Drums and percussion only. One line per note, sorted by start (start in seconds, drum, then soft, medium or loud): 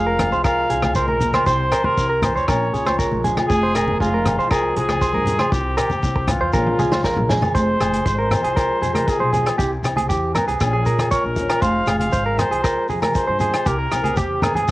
0.19 cross-stick medium
0.19 closed hi-hat medium
0.19 high conga medium
0.19 low conga medium
0.19 low agogo medium
0.32 shekere soft
0.44 kick medium
0.44 cross-stick medium
0.44 low agogo medium
0.44 shekere medium
0.70 closed hi-hat soft
0.70 shekere medium
0.82 cross-stick medium
0.82 high conga medium
0.82 low agogo medium
0.82 shekere soft
0.95 kick medium
0.95 shekere medium
1.08 high conga medium
1.21 closed hi-hat soft
1.21 low conga medium
1.21 shekere medium
1.33 cross-stick medium
1.33 high conga medium
1.33 low agogo medium
1.33 shekere soft
1.46 kick medium
1.46 shekere medium
1.72 cross-stick medium
1.72 closed hi-hat soft
1.72 low agogo medium
1.72 shekere medium
1.84 high conga medium
1.84 low conga medium
1.97 kick medium
1.97 shekere medium
2.22 cross-stick medium
2.22 closed hi-hat soft
2.22 high conga medium
2.22 low conga medium
2.22 low agogo medium
2.22 shekere medium
2.37 shekere soft
2.48 kick medium
2.48 cross-stick medium
2.48 low agogo medium
2.48 shekere medium
2.74 closed hi-hat soft
2.74 shekere medium
2.86 cross-stick medium
2.86 high conga medium
2.86 low agogo medium
2.86 shekere soft
2.99 kick medium
2.99 shekere medium
3.12 high conga medium
3.24 closed hi-hat soft
3.24 low conga medium
3.24 shekere medium
3.37 cross-stick medium
3.37 high conga medium
3.37 low agogo medium
3.37 shekere soft
3.50 kick medium
3.50 shekere medium
3.75 cross-stick medium
3.75 closed hi-hat medium
3.75 low agogo medium
3.75 shekere medium
3.88 high conga medium
3.88 low conga medium
4.00 kick medium
4.00 shekere medium
4.25 cross-stick medium
4.25 closed hi-hat medium
4.25 high conga medium
4.25 low conga medium
4.25 low agogo medium
4.25 shekere medium
4.40 shekere soft
4.51 kick medium
4.51 cross-stick medium
4.51 low agogo medium
4.51 shekere medium
4.76 closed hi-hat medium
4.76 shekere medium
4.89 cross-stick medium
4.89 high conga medium
4.89 low agogo medium
4.89 shekere soft
5.01 kick medium
5.01 shekere medium
5.14 high conga medium
5.26 closed hi-hat medium
5.26 low conga medium
5.26 shekere medium
5.39 cross-stick medium
5.39 high conga medium
5.39 low agogo medium
5.39 shekere soft
5.52 kick medium
5.52 shekere medium
5.78 cross-stick medium
5.78 closed hi-hat medium
5.78 low agogo medium
5.78 shekere medium
5.90 high conga medium
5.90 low conga medium
5.90 shekere soft
6.03 kick medium
6.03 shekere medium
6.16 kick medium
6.27 cross-stick medium
6.27 closed hi-hat medium
6.27 high conga medium
6.27 low conga medium
6.27 low agogo medium
6.27 shekere medium
6.53 kick medium
6.53 high tom soft
6.53 low agogo medium
6.53 shekere medium
6.67 high tom soft
6.79 mid tom medium
6.79 shekere medium
6.92 snare medium
6.92 high conga medium
6.92 low agogo medium
6.92 shekere soft
7.04 kick medium
7.04 snare medium
7.04 shekere medium
7.17 mid tom medium
7.17 high conga medium
7.29 snare medium
7.29 low conga medium
7.29 shekere medium
7.42 floor tom medium
7.42 high conga medium
7.42 low agogo medium
7.42 shekere soft
7.55 kick medium
7.55 closed hi-hat medium
7.55 shekere medium
7.81 cross-stick medium
7.81 closed hi-hat soft
7.81 low agogo medium
7.81 shekere medium
7.92 closed hi-hat medium
7.92 high conga medium
7.92 shekere soft
8.06 kick medium
8.06 closed hi-hat soft
8.06 shekere medium
8.31 cross-stick medium
8.31 closed hi-hat soft
8.31 low conga medium
8.31 low agogo medium
8.31 shekere medium
8.44 closed hi-hat soft
8.44 shekere soft
8.57 kick medium
8.57 cross-stick medium
8.57 closed hi-hat soft
8.57 low agogo medium
8.57 shekere medium
8.82 closed hi-hat soft
8.82 shekere medium
8.95 cross-stick medium
8.95 closed hi-hat medium
8.95 high conga medium
8.95 low agogo medium
8.95 shekere soft
9.07 kick medium
9.07 closed hi-hat soft
9.07 shekere medium
9.33 closed hi-hat soft
9.33 low conga medium
9.33 shekere medium
9.46 cross-stick medium
9.46 closed hi-hat soft
9.46 low agogo medium
9.46 shekere soft
9.59 kick medium
9.59 closed hi-hat medium
9.59 shekere medium
9.84 cross-stick medium
9.84 closed hi-hat soft
9.84 low agogo medium
9.84 shekere medium
9.96 closed hi-hat medium
9.96 high conga medium
9.96 shekere soft
10.10 kick medium
10.10 closed hi-hat soft
10.10 shekere medium
10.35 cross-stick medium
10.35 closed hi-hat soft
10.35 low conga medium
10.35 low agogo medium
10.35 shekere medium
10.48 closed hi-hat soft
10.48 shekere soft
10.60 kick medium
10.60 cross-stick medium
10.60 closed hi-hat soft
10.60 low agogo medium
10.60 shekere medium
10.86 closed hi-hat soft
10.86 shekere medium
10.98 cross-stick medium
10.98 closed hi-hat soft
10.98 high conga medium
10.98 low agogo medium
10.98 shekere soft
11.11 kick medium
11.11 closed hi-hat soft
11.11 shekere medium
11.36 closed hi-hat soft
11.36 low conga medium
11.36 shekere medium
11.49 cross-stick medium
11.49 closed hi-hat soft
11.49 low agogo medium
11.49 shekere soft
11.62 kick medium
11.62 closed hi-hat soft
11.62 shekere medium
11.87 cross-stick medium
11.87 closed hi-hat soft
11.87 low agogo medium
11.87 shekere loud
12.00 closed hi-hat soft
12.00 high conga medium
12.00 shekere soft
12.12 kick medium
12.12 closed hi-hat soft
12.12 shekere medium
12.38 cross-stick medium
12.38 closed hi-hat soft
12.38 low conga medium
12.38 low agogo medium
12.38 shekere loud
12.52 closed hi-hat soft
12.52 shekere soft
12.64 kick medium
12.64 cross-stick medium
12.64 closed hi-hat medium
12.64 low agogo medium
12.64 shekere medium
12.89 closed hi-hat soft
12.89 shekere medium
13.02 cross-stick medium
13.02 closed hi-hat soft
13.02 high conga medium
13.02 low agogo medium
13.02 shekere soft
13.14 kick medium
13.14 closed hi-hat medium
13.14 shekere medium
13.40 closed hi-hat soft
13.40 low conga medium
13.40 shekere medium
13.54 cross-stick medium
13.54 closed hi-hat soft
13.54 low agogo medium
13.54 shekere soft
13.66 kick medium
13.66 closed hi-hat medium
13.66 shekere medium
13.92 cross-stick medium
13.92 closed hi-hat medium
13.92 low agogo medium
13.92 shekere medium
14.04 closed hi-hat soft
14.04 high conga medium
14.04 shekere soft
14.16 kick medium
14.16 closed hi-hat soft
14.16 high conga medium
14.16 shekere medium
14.42 cross-stick medium
14.42 closed hi-hat medium
14.42 high conga medium
14.42 low conga medium
14.42 low agogo medium
14.42 shekere medium
14.54 closed hi-hat soft
14.54 low conga medium
14.54 shekere soft